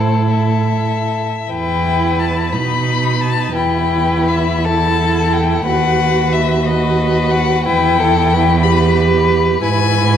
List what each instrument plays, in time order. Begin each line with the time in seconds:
Already playing: cello A2, viola E4, violin A4 C5
0.31 violin E5
1.49 cello E2, viola E4, violin B4 G5
2.19 violin A5
2.53 cello B2, viola D#4, violin B4 B5
3.21 violin A5
3.55 cello E2, viola E4, violin B4 G5
4.28 violin E5
4.65 viola E4, violin A4 A5
5.33 violin G5
5.65 cello D#2, viola F#4, violin B4 F#5
6.33 violin E5
6.66 viola F#4, violin B4 D#5
7.31 violin F#5
7.64 cello E2, viola E4, violin B4 G5
8.00 violin A4
8.33 violin B4
8.63 viola G4, violin B4 B5
9.62 cello G#2, viola E4, violin B4 G#5